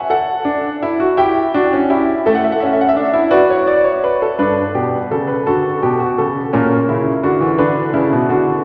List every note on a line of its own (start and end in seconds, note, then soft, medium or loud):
0.00 0.11 E5 medium
0.10 1.14 A4 medium
0.10 1.14 F#5 medium
0.45 0.68 D4 medium
0.82 1.00 E4 medium
1.00 1.17 F#4 medium
1.17 1.40 E4 medium
1.17 1.40 G4 medium
1.17 2.22 G5 medium
1.54 1.71 D4 medium
1.54 1.76 F#4 medium
1.73 1.90 C#4 medium
1.90 2.12 E4 medium
1.90 2.12 G4 medium
2.26 2.48 A3 medium
2.26 3.29 A4 medium
2.26 2.34 E5 medium
2.35 2.42 F#5 medium
2.44 2.51 E5 medium
2.52 2.59 F#5 medium
2.60 2.84 C#4 medium
2.60 2.67 E5 medium
2.66 2.74 F#5 medium
2.73 2.81 E5 medium
2.81 2.89 F#5 medium
2.89 3.31 E5 medium
2.96 3.14 D4 medium
3.13 3.31 E4 medium
3.31 4.36 F#4 medium
3.31 3.49 B4 medium
3.31 3.66 D5 medium
3.50 3.67 C#5 medium
3.67 3.85 D5 medium
3.84 4.03 C#5 medium
4.04 4.21 B4 medium
4.22 4.39 A4 medium
4.39 4.61 G2 medium
4.39 5.43 D4 medium
4.39 4.61 B4 medium
4.74 4.97 B2 medium
4.74 4.97 G4 medium
5.11 5.33 C#3 medium
5.11 5.29 A4 medium
5.27 5.46 B4 medium
5.46 5.69 D3 medium
5.46 5.98 F#4 medium
5.46 5.69 A4 medium
5.83 6.05 B2 medium
5.83 6.00 G4 medium
6.00 6.17 F#4 medium
6.18 6.41 C#3 medium
6.18 6.40 A4 medium
6.53 6.76 A#2 medium
6.53 6.75 C#4 medium
6.53 7.57 A#4 medium
6.89 7.11 C#3 medium
6.89 7.11 E4 medium
7.23 7.41 D3 medium
7.23 7.46 F#4 medium
7.41 7.59 E3 medium
7.58 7.81 D3 medium
7.58 7.81 D4 medium
7.58 8.63 B4 medium
7.94 8.12 C#3 medium
7.94 8.16 E4 medium
8.12 8.30 B2 medium
8.29 8.52 D3 medium
8.29 8.53 F#4 medium